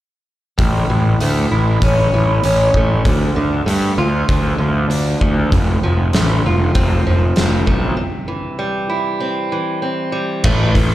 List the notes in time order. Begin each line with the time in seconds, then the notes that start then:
0.58 A1 A2, kick, open hi-hat
0.90 A1 E3
1.20 D2 A3, open hi-hat
1.51 A1 E4
1.82 A1 C#4, kick, open hi-hat
2.14 A1 E3
2.44 A1 C#4, open hi-hat
2.74 A1 A3, kick
3.05 D2 D3, kick, open hi-hat
3.35 D2 D3
3.66 G2 A3, open hi-hat
3.98 D2 F4
4.29 D2 D4, kick, open hi-hat
4.58 D2 D3
4.89 D2 D4, open hi-hat
5.21 D2 A3, kick
5.52 F1 F2, kick, open hi-hat
5.83 F1 F3
6.13 A1 A3, snare, open hi-hat
6.45 F1 F4
6.75 F1 C4, kick, open hi-hat
7.06 F1 F3
7.36 F1 C4, snare, open hi-hat
7.66 B1 A3, kick
7.97 C3
8.28 E3
8.59 G3
8.89 E4
9.20 C4
9.52 E3
9.82 C4
10.12 G3
10.44 A1 A2 E3 A3, kick, crash
10.75 A1 A2 E3, kick, open hi-hat